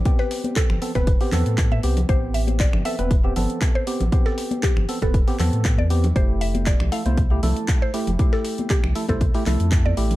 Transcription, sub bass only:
X:1
M:4/4
L:1/16
Q:"Swing 16ths" 1/4=118
K:Am
V:1 name="Sub bass" clef=bass
z4 z G,,, z E,,,2 z E,, A,,3 C,,2 | A,,,4- A,,, G,,, z E,,,3 G,,, z4 A,,, | z4 z G,,, z E,,,2 z E,, A,,2 E,,3 | F,,,4- F,,, C,, z C,,3 C,, z4 F,,, |
z4 z C,, z C,,2 z C,, F,,3 A,,,2 |]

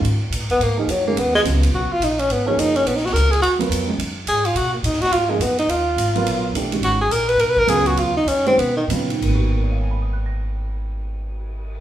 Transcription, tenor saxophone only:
X:1
M:4/4
L:1/8
Q:"Swing" 1/4=212
K:G#dor
V:1 name="Tenor saxophone"
z3 B, A, D, F, A, | B, G, z2 F E D C | B, C D C (3B, D F A G | F z4 z G E |
F A, D F E G, B, D | E6 z2 | F G A B (3A B A G F | E D C ^B, =B, D, z2 |
z8 | z8 |]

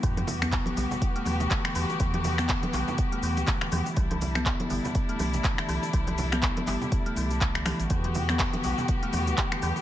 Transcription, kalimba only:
X:1
M:4/4
L:1/16
Q:"Swing 16ths" 1/4=122
K:Em
V:1 name="Kalimba" clef=bass
E, E, z B, D, z G, B,, z A, E, z D, E, E, z | E, E, z B, D, z G, B,, z A, E, z D, E, E, z | E, E, z B, D, z G, B,, z A, E, z D, E, E, z | E, E, z B, D, z G, B,, z A, E, z D, E, E, z |
E, E, z B, D, z G, B,, z A, E, z D, E, E, z |]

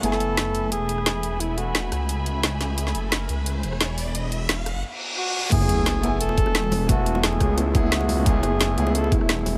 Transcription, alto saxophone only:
X:1
M:4/4
L:1/8
Q:1/4=175
K:F#m
V:1 name="Alto saxophone"
A4 G4 | E F3 z4 | z8 | z6 F2 |
G4 A4 | F2 G2 E2 F2 | G4 A E3 |]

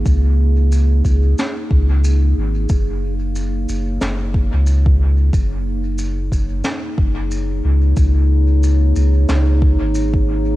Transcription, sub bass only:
X:1
M:4/4
L:1/16
Q:"Swing 16ths" 1/4=91
K:F#
V:1 name="Sub bass" clef=bass
C,,6 C,,2 z2 C,,4 G,,,2 | F,,,6 F,,,2 F,,,3 C,,4- C,, | F,,,6 F,,,2 z2 F,,,4 C,,2 | C,,6 C,,2 C,,3 G,,,4- G,,, |]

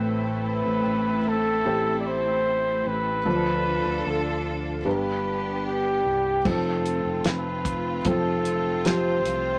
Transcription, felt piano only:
X:1
M:4/4
L:1/8
Q:1/4=75
K:Flyd
V:1 name="Felt piano"
[A,CB]3 z [A,CG]4 | [F,DA]4 [G,DB]4 | [F,CA]4 [F,CA]2 [F,CG]2 |]
V:2 name="Felt piano" clef=bass
A,,2 z6 | D,3 z G,,3 z | z8 |]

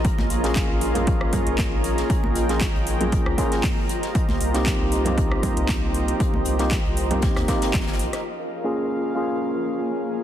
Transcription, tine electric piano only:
X:1
M:4/4
L:1/16
Q:"Swing 16ths" 1/4=117
K:Bbdor
V:1 name="Tine electric piano"
z3 [B,DFA]4 [B,DFA]8- [B,DFA]- | [B,DFA]3 [B,DFA] z3 [B,DFA]3 [B,DFA]2 z4 | z3 [B,CEG]4 [B,CEG]8- [B,CEG]- | [B,CEG]3 [B,CEG] z3 [B,CEG]3 [B,CEG]2 z4 |
z3 [B,DFA]4 [B,DFA]8- [B,DFA] |]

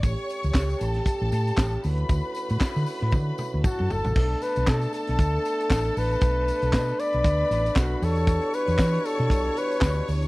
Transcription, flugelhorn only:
X:1
M:4/4
L:1/8
Q:"Swing 16ths" 1/4=117
K:Bm
V:1 name="Flugelhorn"
z8 | z6 F A- | A B A A4 B- | B3 d3 F A- |
A B2 A2 B2 z |]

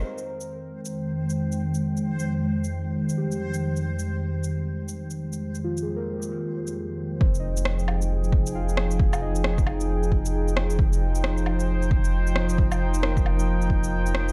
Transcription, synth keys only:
X:1
M:4/4
L:1/16
Q:"Swing 16ths" 1/4=134
K:Fm
V:1 name="Synth keys"
[ce]8- [ce]3 z4 z | z12 G4- | G6- G z8 z | z2 F A B8 z4 |
c e4- e g6 f4- | f2 e8- e3 z3 | z16 | z4 B8- B3 z |]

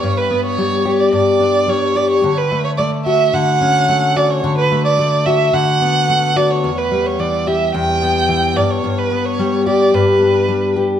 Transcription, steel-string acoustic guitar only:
X:1
M:4/4
L:1/8
Q:1/4=109
K:Glyd
V:1 name="Steel-string acoustic guitar"
G,, B, G, G G,, D G, G | D, A, A, F D, C A, F | D, A, A, F D, B, A, F | E,, G, E, G E,, B, E, G,, |
G,, B, G, G G,, D G, G |]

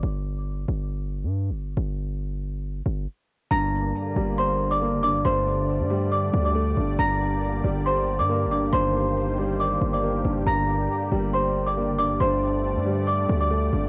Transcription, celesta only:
X:1
M:4/4
L:1/16
Q:1/4=138
K:Gm
V:1 name="Celesta"
z16 | z16 | [bb']8 [cc']3 [dd']3 [dd']2 | [cc']8 [dd']3 [dd']4- [dd'] |
[bb']8 [cc']3 [dd']3 [dd']2 | [cc']8 [dd']3 [dd']4- [dd'] | [bb']8 [cc']3 [dd']3 [dd']2 | [cc']8 [dd']3 [dd']4- [dd'] |]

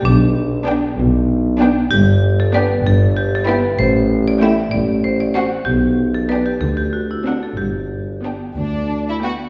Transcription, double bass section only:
X:1
M:6/8
L:1/8
Q:3/8=64
K:G
V:1 name="Double bass section" clef=bass
B,,,3 B,,,3 | G,,,3 G,,,3 | A,,,3 A,,,3 | B,,,3 D,,3 |
G,,,3 D,,3 |]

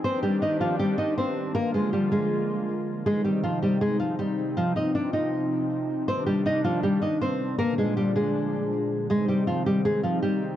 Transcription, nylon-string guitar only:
X:1
M:4/4
L:1/8
Q:1/4=159
K:Ablyd
V:1 name="Nylon-string guitar"
[Cc] [G,G] [Ee] [F,F] [G,G] [Ee] [Cc]2 | [B,B] [A,A] [G,G] [A,A]4- [A,A] | [A,A] [G,G] [F,F] [G,G] [A,A] [F,F] [G,G]2 | [F,F] [Ee] [Dd] [Ee]4- [Ee] |
[Cc] [G,G] [Ee] [F,F] [G,G] [Ee] [Cc]2 | [B,B] [A,A] [G,G] [A,A]4- [A,A] | [A,A] [G,G] [F,F] [G,G] [A,A] [F,F] [G,G]2 |]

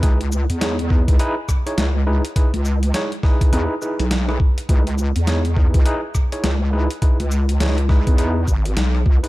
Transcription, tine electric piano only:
X:1
M:4/4
L:1/16
Q:"Swing 16ths" 1/4=103
K:C#m
V:1 name="Tine electric piano"
[DEGB] z3 [DEGc] z [DEGB]2 [DEGB] z2 [DEGc] z2 [DEGB] z | [DEGB] z3 [DEGc] z [DEGB]2 [DEGB] z [DEGB] z2 [DEGB] z2 | [DEGB] z3 [DEGc] z [DEGB]2 [DEGB] z2 [DEGc] z2 [DEGB] z | [DEGB] z3 [DEGc] z [DEGB]2 [DEGB] z6 [DEGB] |]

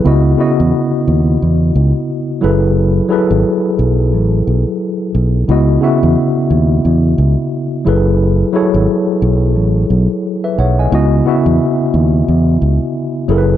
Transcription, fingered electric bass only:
X:1
M:4/4
L:1/16
Q:"Swing 16ths" 1/4=88
K:C#m
V:1 name="Fingered electric bass" clef=bass
C,,2 z E,, z2 D,,2 E,,2 C,, z3 F,,,2- | F,,,2 z G,,, z2 B,,,2 A,,,2 B,,, z3 B,,,2 | C,,2 z E,, z2 D,,2 E,,2 C,, z3 F,,,2- | F,,,2 z G,,, z2 B,,,2 A,,,2 B,,, z3 B,,,2 |
C,,2 z E,, z2 D,,2 E,,2 C,, z3 F,,,2 |]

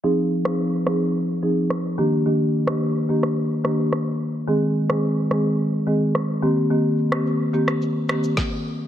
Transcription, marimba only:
X:1
M:4/4
L:1/16
Q:1/4=108
K:Fdor
V:1 name="Marimba"
[F,CEA] z2 [F,CEA] z2 [F,CEA] z3 [F,CEA] z3 [E,B,DG]2 | [E,B,DG] z2 [E,B,DG] z2 [E,B,DG] z3 [E,B,DG] z4 z | [E,A,CA] z2 [E,A,CA] z2 [E,A,CA] z3 [E,A,CA] z3 [E,B,CG]2 | [E,B,CG] z2 [E,B,CG] z2 [E,B,CG] z3 [E,B,CG] z4 z |]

